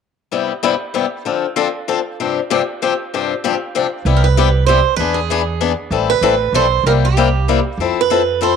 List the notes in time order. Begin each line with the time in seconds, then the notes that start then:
0.32 G2 C3 G3 B3 E4 G4
0.63 G2 C3 G3 B3 E4 G4
0.94 G2 C3 G3 B3 E4 G4
1.25 D3 F3 C4 D4 A4
1.56 D3 F3 C4 D4 A4
1.88 D3 F3 C4 D4 A4
2.20 G2 C3 F3 C4 D4 G4
2.50 G2 C3 F3 C4 D4 G4
2.82 G2 C3 F3 C4 D4 G4
3.14 G2 C3 F3 C4 D4 G4
3.44 G2 C3 F3 C4 D4 G4
3.75 G2 C3 F3 C4 D4 G4
4.05 C2 C3 G3 B3 E4 G4
4.17 A#4
4.24 B4
4.37 C3 G3 B3 E4 G4
4.66 C3 G3 B3 E4 G4 C5
4.96 E2 E3 B3 D4 G#4 B4
5.14 G#4
5.30 E3 B3 D4 G#4
5.61 E3 B3 D4 G#4
5.91 A1 E3 G3 C4 E4 A4
6.10 B4
6.21 A1 E3 G3 C4 E4 A4
6.53 B1 E3 G3 C4 E4 A4 C5
6.84 C2 C3 G3 A#3 E4 G4 A#4
7.05 G4
7.17 C3 G3 A#3 E4 G4
7.48 C3 G3 A#3 E4 G4
7.78 F2 F3 C4 E4 A4
8.01 B4
8.10 F3 C4 E4 A4
8.41 F3 C4 E4 A4 C5